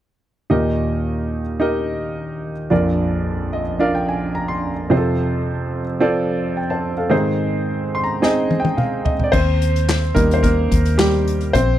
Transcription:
0.50 2.67 D#2 soft
0.50 2.67 A#2 soft
0.50 1.40 D#4 medium
0.50 1.40 G4 medium
0.50 1.41 A#4 soft
0.50 1.41 D#5 medium
1.60 2.50 D#4 medium
1.60 2.50 G4 medium
1.60 2.51 A#4 medium
1.60 2.51 D#5 medium
2.70 4.88 A#1 soft
2.70 4.88 F2 soft
2.70 3.61 D4 medium
2.70 3.61 F4 medium
2.70 3.61 A#4 soft
2.70 3.61 D5 medium
3.53 3.79 D#5 medium
3.79 4.70 D4 medium
3.79 4.71 F4 medium
3.79 4.71 A#4 medium
3.79 4.71 D5 medium
3.79 3.94 F5 medium
3.95 4.08 G5 soft
4.09 4.34 G#5 medium
4.35 4.48 A#5 medium
4.48 4.88 C6 medium
4.90 7.08 F2 soft
4.90 7.07 C3 medium
4.90 5.81 C4 medium
4.90 5.81 F4 medium
4.90 4.98 G#4 soft
4.90 5.81 C5 medium
4.97 5.84 A4 medium
6.00 6.91 C4 medium
6.00 6.91 F4 medium
6.00 6.57 A4 medium
6.00 6.57 D5 medium
6.57 6.70 G5 soft
6.70 6.97 C5 soft
6.70 6.97 A5 medium
6.97 7.24 A4 soft
6.97 7.24 F5 soft
7.10 9.28 G#2 soft
7.10 9.28 D#3 medium
7.10 8.01 C4 medium
7.10 8.01 D#4 medium
7.10 8.02 G#4 medium
7.10 8.02 C5 medium
7.95 8.03 C6 medium
8.04 8.21 A#5 medium
8.22 9.12 C4 medium
8.22 9.13 D#4 medium
8.22 9.13 G#4 medium
8.22 9.03 D#5 medium
8.22 8.57 G#5 medium
8.22 snare soft
8.51 high tom soft
8.60 8.77 G5 medium
8.65 high tom medium
8.77 9.03 F5 medium
8.77 mid tom medium
9.05 9.31 D#5 medium
9.05 floor tom medium
9.19 floor tom medium
9.24 9.32 D5 medium
9.32 10.12 D#2 medium
9.32 10.12 C4 medium
9.32 10.18 C5 medium
9.32 kick medium
9.32 crash medium
9.62 closed hi-hat medium
9.76 closed hi-hat soft
9.89 snare medium
9.89 clap medium
10.03 closed hi-hat soft
10.14 10.67 D#2 medium
10.14 10.52 G3 medium
10.14 10.35 A#3 medium
10.14 10.52 D#4 medium
10.14 10.36 A#4 medium
10.14 kick medium
10.14 closed hi-hat medium
10.31 10.42 C5 medium
10.31 closed hi-hat soft
10.43 10.95 A#3 medium
10.43 11.00 A#4 medium
10.43 kick medium
10.43 closed hi-hat medium
10.71 11.50 D#2 medium
10.71 kick medium
10.71 closed hi-hat medium
10.85 closed hi-hat soft
10.98 11.37 G3 medium
10.98 11.37 G4 medium
10.98 snare loud
10.98 clap medium
11.14 closed hi-hat soft
11.28 closed hi-hat medium
11.41 closed hi-hat soft
11.53 11.79 A#1 medium
11.53 11.79 C4 medium
11.53 11.79 C5 medium
11.53 kick medium
11.53 closed hi-hat medium

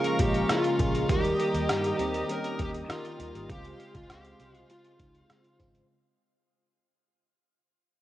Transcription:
0.00 0.19 C#3 medium
0.00 1.06 F3 medium
0.00 0.19 G#3 medium
0.00 1.05 G#3 medium
0.00 1.07 G#3 medium
0.00 0.20 A#3 medium
0.00 1.05 C#4 medium
0.00 1.11 C#4 medium
0.00 0.20 F4 medium
0.00 1.10 G4 medium
0.00 0.17 G#4 medium
0.00 0.20 A#4 medium
0.00 1.07 F5 medium
0.00 1.07 A#5 medium
0.00 1.07 C#6 medium
0.04 closed hi-hat soft
0.19 0.42 A#1 medium
0.19 0.46 C#3 medium
0.19 0.46 G#3 medium
0.19 0.46 A#3 medium
0.19 0.47 F4 medium
0.19 0.51 G4 medium
0.19 kick medium
0.19 closed hi-hat medium
0.34 closed hi-hat soft
0.49 0.76 C#3 medium
0.49 0.76 G#3 medium
0.49 0.76 A#3 medium
0.49 0.77 F4 medium
0.49 1.11 F4 medium
0.49 cross-stick loud
0.49 closed hi-hat medium
0.64 closed hi-hat soft
0.79 1.02 A#1 medium
0.79 1.06 C#3 medium
0.79 1.06 G#3 medium
0.79 1.06 A#3 medium
0.79 1.07 G#4 loud
0.79 kick medium
0.79 closed hi-hat medium
0.95 closed hi-hat soft
1.08 1.32 D#2 medium
1.08 1.36 D#3 medium
1.08 1.36 G3 medium
1.08 3.46 G3 medium
1.08 1.36 A#3 medium
1.08 3.46 D#4 medium
1.08 1.36 G4 loud
1.08 3.47 G4 medium
1.08 2.34 G4 medium
1.08 3.46 A#4 medium
1.08 3.47 D#5 medium
1.08 3.47 A#5 medium
1.08 3.47 D#6 medium
1.08 kick loud
1.08 closed hi-hat medium
1.25 closed hi-hat soft
1.39 1.66 D#3 medium
1.39 1.66 G3 medium
1.39 1.67 A#3 medium
1.39 1.67 A#4 medium
1.39 closed hi-hat medium
1.54 1.66 D#2 medium
1.54 closed hi-hat medium
1.69 1.92 G2 medium
1.69 1.96 D#3 medium
1.69 1.96 G3 medium
1.69 1.96 A#3 medium
1.69 1.97 G4 medium
1.69 cross-stick loud
1.69 closed hi-hat medium
1.84 closed hi-hat soft
1.99 2.22 D#2 medium
1.99 2.26 D#3 medium
1.99 2.26 G3 medium
1.99 2.26 A#3 medium
1.99 2.26 C4 medium
1.99 closed hi-hat medium
2.14 closed hi-hat soft
2.29 2.56 D#3 medium
2.29 2.56 G3 medium
2.29 2.56 A#3 medium
2.29 2.57 C#4 medium
2.29 2.58 A#4 medium
2.29 closed hi-hat medium
2.44 closed hi-hat soft
2.58 2.82 D#2 medium
2.58 2.86 D#3 medium
2.58 2.86 G3 medium
2.58 2.86 A#3 medium
2.58 2.87 G4 medium
2.58 2.69 G4 medium
2.58 kick medium
2.58 closed hi-hat medium
2.74 closed hi-hat soft
2.88 3.16 D#3 medium
2.88 3.01 D#3 medium
2.88 3.16 G3 medium
2.88 3.16 A#3 medium
2.88 3.51 F4 medium
2.88 3.16 G4 medium
2.88 cross-stick loud
2.88 closed hi-hat medium
3.05 closed hi-hat soft
3.19 3.31 D#2 medium
3.19 3.46 D#3 medium
3.19 3.46 G3 medium
3.19 3.46 A#3 medium
3.19 3.47 G4 medium
3.19 closed hi-hat medium
3.35 3.46 G#1 medium
3.35 closed hi-hat soft
3.49 3.72 C#2 medium
3.49 3.76 C#3 medium
3.49 3.76 G#3 medium
3.49 5.87 G#3 medium
3.49 5.85 G#3 medium
3.49 3.76 C4 medium
3.49 5.85 F4 medium
3.49 3.77 F4 medium
3.49 3.96 G4 medium
3.49 5.86 C5 medium
3.49 5.87 F5 medium
3.49 5.87 C6 medium
3.49 kick loud
3.49 closed hi-hat medium
3.65 closed hi-hat soft
3.79 4.06 C#3 medium
3.79 4.06 G#3 medium
3.79 4.06 C4 medium
3.79 4.07 F4 medium
3.79 closed hi-hat medium
3.95 4.06 C#2 medium
3.95 4.10 F4 medium
3.95 kick medium
3.95 closed hi-hat soft
4.09 4.32 C#2 medium
4.09 4.36 C#3 medium
4.09 4.36 G#3 medium
4.09 4.37 C4 medium
4.09 4.57 G4 medium
4.09 4.37 G4 medium
4.09 cross-stick loud
4.09 closed hi-hat medium
4.25 closed hi-hat soft
4.39 4.62 C2 medium
4.39 4.66 C#3 medium
4.39 4.66 G#3 medium
4.39 4.67 C4 medium
4.39 4.67 F4 medium
4.39 closed hi-hat medium
4.55 4.71 F4 medium
4.55 closed hi-hat soft
4.69 4.96 C#3 medium
4.69 4.96 G#3 medium
4.69 4.97 C4 medium
4.69 4.97 F4 medium
4.69 5.56 F4 medium
4.69 closed hi-hat medium
4.84 closed hi-hat soft
4.99 5.22 C#2 medium
4.99 5.26 C#3 medium
4.99 5.26 G#3 medium
4.99 5.27 C4 medium
4.99 5.27 D#4 medium
4.99 kick medium
4.99 closed hi-hat medium
5.15 closed hi-hat soft
5.29 5.56 C#3 medium
5.29 5.56 G#3 medium
5.29 5.56 C4 medium
5.29 5.57 F4 medium
5.29 cross-stick medium
5.29 closed hi-hat medium
5.44 closed hi-hat soft
5.59 5.82 G#1 medium
5.59 5.86 C#3 medium
5.59 5.86 G#3 medium
5.59 5.86 C4 medium
5.59 5.87 F4 loud
5.59 kick medium
5.59 closed hi-hat medium
5.75 closed hi-hat soft

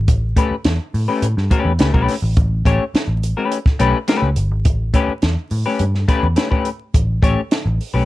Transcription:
0.08 0.33 A1 loud
0.08 kick loud
0.08 closed hi-hat medium
0.36 0.54 A3 medium
0.36 0.54 C#4 medium
0.36 0.54 G4 medium
0.36 0.55 B4 medium
0.36 kick medium
0.36 closed hi-hat medium
0.51 muted picked electric bass stroke soft
0.65 0.77 E2 loud
0.65 snare loud
0.65 closed hi-hat medium
0.94 1.06 A2 loud
0.94 open hi-hat soft
1.08 1.26 A3 medium
1.08 1.26 C#4 medium
1.08 1.26 G4 medium
1.08 1.25 B4 medium
1.22 1.35 A2 loud
1.22 closed hi-hat medium
1.37 1.49 G2 medium
1.37 snare soft
1.51 1.71 A3 medium
1.51 1.71 C#4 medium
1.51 1.71 G4 medium
1.51 1.72 B4 medium
1.51 kick medium
1.51 closed hi-hat medium
1.65 1.77 E2 medium
1.79 1.92 C#2 medium
1.79 1.93 A3 medium
1.79 1.93 C#4 medium
1.79 1.93 G4 medium
1.79 1.93 B4 medium
1.79 snare loud
1.79 closed hi-hat medium
1.94 2.06 B1 medium
1.94 2.15 A3 medium
1.94 2.15 C#4 medium
1.94 2.14 G4 medium
1.94 2.14 B4 medium
1.94 kick medium
2.08 snare soft
2.08 open hi-hat medium
2.22 2.35 A1 medium
2.37 2.61 A1 loud
2.37 kick loud
2.37 closed hi-hat medium
2.65 2.78 A1 loud
2.65 2.83 A3 medium
2.65 2.83 C#4 medium
2.65 2.83 G4 medium
2.65 2.83 C#5 loud
2.65 kick medium
2.65 closed hi-hat medium
2.94 muted picked electric bass stroke soft
2.94 snare loud
2.94 closed hi-hat medium
3.08 3.32 A1 medium
3.23 closed hi-hat medium
3.37 3.58 A3 medium
3.37 3.57 C#4 medium
3.37 3.57 G4 medium
3.37 3.57 B4 medium
3.52 closed hi-hat medium
3.66 muted picked electric bass stroke soft
3.66 kick medium
3.66 snare soft
3.79 3.92 B1 medium
3.79 3.97 A3 medium
3.79 3.97 C#4 medium
3.79 3.97 G4 medium
3.79 3.98 B4 medium
3.79 closed hi-hat medium
4.08 4.28 A3 medium
4.08 4.28 C#4 medium
4.08 4.29 G4 medium
4.08 4.29 B4 loud
4.08 snare loud
4.08 closed hi-hat medium
4.22 4.35 C#2 medium
4.36 4.51 G1 loud
4.36 closed hi-hat medium
4.51 4.66 G#1 loud
4.65 4.90 A1 loud
4.65 kick loud
4.65 closed hi-hat medium
4.94 5.11 A3 medium
4.94 5.12 C#4 medium
4.94 5.12 G4 medium
4.94 5.12 B4 loud
4.94 kick medium
4.94 closed hi-hat medium
5.08 muted picked electric bass stroke soft
5.22 5.35 E2 loud
5.22 snare medium
5.22 closed hi-hat medium
5.51 5.63 A2 medium
5.51 open hi-hat soft
5.66 5.83 A3 medium
5.66 5.83 C#4 medium
5.66 5.83 G4 medium
5.66 5.83 B4 medium
5.79 6.04 G2 medium
5.79 closed hi-hat medium
5.95 snare soft
6.08 6.25 A3 medium
6.08 6.26 C#4 medium
6.08 6.26 G4 medium
6.08 6.26 B4 loud
6.08 kick medium
6.08 closed hi-hat medium
6.23 6.35 E2 medium
6.36 6.50 A3 medium
6.36 6.50 C#4 medium
6.36 6.50 G4 medium
6.36 6.49 B4 medium
6.36 snare loud
6.36 closed hi-hat medium
6.51 6.69 A3 medium
6.51 6.69 C#4 medium
6.51 6.68 G4 medium
6.51 6.68 B4 medium
6.51 kick medium
6.65 closed hi-hat medium
6.94 7.19 A1 medium
6.94 kick loud
6.94 closed hi-hat loud
7.22 7.35 A1 loud
7.22 7.40 A3 medium
7.22 7.40 C#4 medium
7.22 7.40 G4 medium
7.22 7.40 C#5 loud
7.22 kick loud
7.22 closed hi-hat medium
7.51 snare loud
7.51 closed hi-hat medium
7.66 7.78 A1 medium
7.81 open hi-hat soft
7.94 8.05 B1 medium
7.94 8.05 A3 medium
7.94 8.05 C#4 medium
7.94 8.05 G4 medium
7.94 8.05 B4 medium

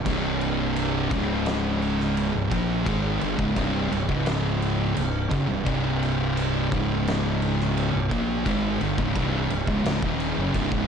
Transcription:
0.06 1.07 C1 medium
0.06 1.11 C2 medium
0.06 1.11 G2 loud
0.06 1.11 C3 loud
0.06 kick loud
0.06 crash medium
0.41 crash medium
0.76 crash medium
1.11 2.30 C#1 loud
1.11 2.33 C#2 medium
1.11 2.33 G#2 medium
1.11 2.34 C#3 medium
1.11 kick loud
1.11 crash medium
1.46 snare loud
1.46 crash medium
1.82 crash soft
2.00 snare soft
2.17 crash medium
2.34 2.51 C1 medium
2.34 2.50 C2 medium
2.34 2.51 G2 medium
2.50 2.84 A#1 medium
2.50 2.85 A#2 medium
2.50 2.85 F3 medium
2.50 2.85 A#3 medium
2.50 kick loud
2.50 crash medium
2.85 3.19 G#1 loud
2.85 3.20 G#2 medium
2.85 3.20 D#3 medium
2.85 3.20 G#3 loud
2.85 kick loud
2.85 crash medium
3.21 3.39 G1 medium
3.21 3.37 G2 medium
3.21 3.38 D3 loud
3.21 crash medium
3.38 3.56 C#1 medium
3.38 3.55 C#2 medium
3.38 3.55 G#2 medium
3.38 kick loud
3.55 3.89 C1 loud
3.55 3.90 C2 medium
3.55 3.90 G2 medium
3.55 3.91 C3 loud
3.55 kick loud
3.55 crash medium
3.91 4.08 C1 medium
3.91 4.08 C2 medium
3.91 4.09 G2 medium
3.91 crash medium
4.08 4.93 C#1 medium
4.08 4.95 C#2 medium
4.08 4.96 G#2 medium
4.08 4.96 C#3 medium
4.08 kick medium
4.26 snare loud
4.26 crash medium
4.62 crash medium
4.95 5.29 C1 medium
4.95 5.24 C2 medium
4.95 5.25 G2 medium
4.95 crash medium
5.30 5.48 F#1 loud
5.30 5.47 F#2 medium
5.30 5.48 C#3 loud
5.30 kick loud
5.30 crash medium
5.48 5.66 C1 medium
5.48 5.64 C2 medium
5.48 5.64 G2 medium
5.65 6.68 C1 medium
5.65 6.70 C2 medium
5.65 6.70 G2 medium
5.65 6.70 C3 loud
5.65 kick loud
5.65 crash medium
6.03 crash medium
6.37 crash medium
6.71 7.90 C#1 loud
6.71 7.92 C#2 medium
6.71 7.93 G#2 medium
6.71 7.93 C#3 loud
6.71 kick loud
6.71 crash medium
7.08 snare loud
7.08 crash medium
7.42 crash medium
7.61 snare soft
7.77 crash medium
7.93 8.11 C1 medium
7.93 8.11 C2 medium
7.93 8.11 G2 medium
8.11 8.44 A#1 medium
8.11 8.44 A#2 medium
8.11 8.45 F3 medium
8.11 8.46 A#3 medium
8.11 kick loud
8.11 crash medium
8.45 8.79 G#1 medium
8.45 8.79 G#2 medium
8.45 8.80 D#3 medium
8.45 8.80 G#3 loud
8.45 kick loud
8.45 crash medium
8.81 8.97 G1 medium
8.81 8.98 G2 loud
8.81 8.98 D3 loud
8.81 crash medium
8.98 9.15 C#1 medium
8.98 9.15 C#2 medium
8.98 9.16 G#2 loud
8.98 kick loud
9.15 9.48 C1 medium
9.15 9.50 C2 medium
9.15 9.50 G2 medium
9.15 9.50 C3 medium
9.15 kick loud
9.15 crash medium
9.50 9.67 C1 medium
9.50 9.69 C2 medium
9.50 9.69 G2 medium
9.50 crash medium
9.67 9.84 C#1 medium
9.67 9.85 C#2 medium
9.67 9.85 G#2 medium
9.67 kick loud
9.85 10.02 C#1 medium
9.85 10.02 C#2 loud
9.85 10.03 G#2 loud
9.85 snare loud
9.85 crash medium
10.03 10.35 D#1 medium
10.03 10.37 D#2 medium
10.03 10.37 A#2 medium
10.03 10.37 D#3 medium
10.03 kick loud
10.20 crash medium
10.37 10.53 F#1 medium
10.37 10.55 F#2 loud
10.37 10.55 C#3 medium
10.54 10.71 C1 medium
10.54 10.72 C2 loud
10.54 10.72 G2 loud
10.54 kick medium
10.54 crash medium
10.72 10.87 C#1 medium
10.72 10.87 C#2 medium
10.72 10.87 G#2 medium
10.72 kick loud

